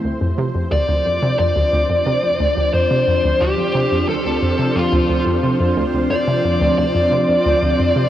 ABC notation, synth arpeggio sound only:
X:1
M:4/4
L:1/16
Q:1/4=89
K:Dm
V:1 name="Synth arpeggio sound" clef=bass
D,, F,, C, F,, D,, D,, F,, C, F,, D,, D,, F,, C, F,, D,, D,, | F,, C, F,, D,, D,, F,, C, F,, D,, D,, F,, C, F,, D,, D,, F,, | C, F,, D,, D,, F,, C, F,, D,, D,, F,, C, F,, D,, D,, F,, C, |]